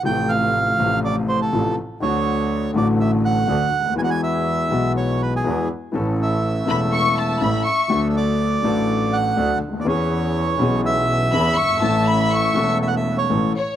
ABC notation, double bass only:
X:1
M:4/4
L:1/8
Q:1/4=122
K:A
V:1 name="Double bass" clef=bass
A,,,3 A,,,3 A,,, z | D,,3 A,,,3 D,, D,, | E,,3 B,,,3 E,, z | A,,,3 E,,,3 A,,, z |
D,,3 A,,,3 D,, D,, | E,,3 B,,,3 E,, =G,,, | A,,,3 E,,,3 A,,, z |]